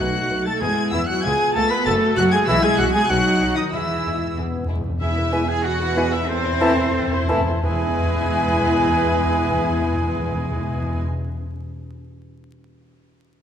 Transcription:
Already playing: F#4
0.00 B2 F#3 A3 D#4 F#4 F#5 F#6
0.29 B1 D#4 B4
0.46 A3 A4 A5 A6
0.61 E2 G#3 B3 E4 G#4 B4 G#5 G#6
0.92 E2 E3 E4 B4 E5 E6
1.07 F#3 F#4 F#5 F#6
1.22 C#2 G#3 F4 G#4 B4 G#5 G#6
1.54 C#2 A3 F4 A4 B4 A5 A6
1.70 B3 B4 B5 B6
1.85 F#1 A3 F#4 A4 A5 A6
2.16 F#1 F#3 F#4 A4 F#5 F#6
2.32 G#3 G#4 G#5 G#6
2.47 B1 B2 E3 G#3 E4 G#4 E5 E6
2.62 G#3 G#4 G#5 G#6
2.78 B1 F#3 E4 F#4 G#4 F#5 F#6
2.93 G#3 G#4 G#5 G#6
3.08 B1 F#3 D#4 F#4 F#5 F#6
3.42 B1 D#4 F#4
3.56 D#3 D#4 D#5 D#6
3.72 E2 E3 G#3 E4 G#4 E5 E6
3.80 E2
3.88 E2
3.96 E2
4.03 E2 E4 G#4
4.11 E2
4.18 E2
4.34 E2 B3 E4 G#4
4.41 E2
4.50 E2
4.57 E2
4.65 E2 G#3 E4 G#4
4.69 E2
4.81 E2
4.88 E2
5.00 E2 B3 E4 G#4 E5
5.17 E4 B4
5.32 E3 G#3 B3 E4 G#4 B4 G#5
5.48 E4 G#4 B4 G#5
5.63 B3 F#4 G#4 F#5
5.80 E4 B4
5.95 E3 G#3 B3 E4 G#4 B4 G#5
6.11 E4 B4 E5
6.27 E2 C4 A4 C5
6.37 E2
6.44 E2 E4 C5
6.52 E2
6.60 E2 E3 A3 C4 E4 A4 A5
6.68 E2
6.76 E2 E4 C5
6.84 E2
6.91 E2 C4 A4
6.99 E2
7.07 E2 E4 C5
7.16 E2
7.24 E2
7.28 E2 E3 A3 C4 E4 A4 A5
7.41 E2
7.47 E2 E4 C5
7.62 E2 E3 G#3 B3 E4 G#4 B4 G#5
7.69 E2
7.76 E2
7.82 E2
7.89 E2
7.96 E2
8.03 E2
8.09 E2
8.15 E2
8.22 E2
8.28 E2
8.34 E2
8.41 E2
8.47 E2
8.53 E2
8.60 E2
8.66 E2
8.72 E2
8.79 E2
8.85 E2
8.92 E2
8.98 E2
9.05 E2
9.11 E2
9.17 E2
9.24 E2
9.30 E2
9.37 E2
9.44 E2
9.51 E2
9.58 E2
9.64 E2
9.70 E2
9.76 E2
9.82 E2
9.88 E2
9.94 E2
10.00 E2
10.07 E2
10.13 E2
10.19 E2
10.25 E2
10.31 E2
10.38 E2
10.44 E2
10.50 E2
10.57 E2
10.63 E2
10.69 E2
10.76 E2
10.82 E2
10.88 E2
10.94 E2

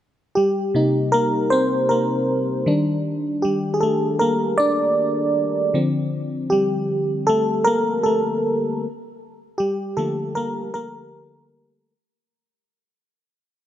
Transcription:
0.35 G3 G4
0.74 C3 A#3 D#4
1.12 A#3 A#4
1.50 C4 C5
1.89 A#3 A#4
2.66 D#3 G3 D4
3.42 G3 G4
3.74 G#4
3.81 A3 A4
4.19 A#3 A#4
4.58 D4 D5
5.74 D3 F3 C4
6.50 G3 G4
7.27 A3 A4
7.64 A#3 A#4
8.03 A3 A4
9.58 G3 G4
9.97 D3 F3 A3 A#3 A4
10.35 A#3 A#4
10.74 A#3 A#4

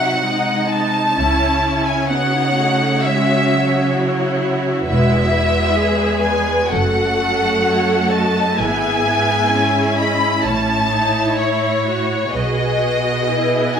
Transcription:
Already playing: C3 F#3 D#4 F#4 E5 F#5
0.23 G#3 D#4 D#5
0.70 D#4 A5
1.15 C#2 C#3 C#4 E4 C#5
1.64 E4
1.86 G#5
2.10 B3 D#4 F#4 C#5 F#5
2.57 A3
3.03 G#3 C#4 E5
3.52 F#3
3.98 E4
4.87 E1 E2 G#3 E4 B4 E5
5.34 G#3
5.78 G#4
6.24 B4 G#5
6.69 F#1 F#2 A3 F#4 A4 F#5
7.65 C#5
8.11 D#5 A5
8.57 G#1 G#2 B3 E4 G#4 E5 G#5
9.04 B3
9.51 C#4 E5
9.97 D#5 B5
10.44 A1 A2 C#4 E4 C#5 A5
10.92 D#4
11.38 E4 C#5
11.86 F#4
12.32 B1 B2 F#4 G#4 B4 D#5
12.79 B4
13.26 B3 E4 G#4
13.75 D#4 G#5

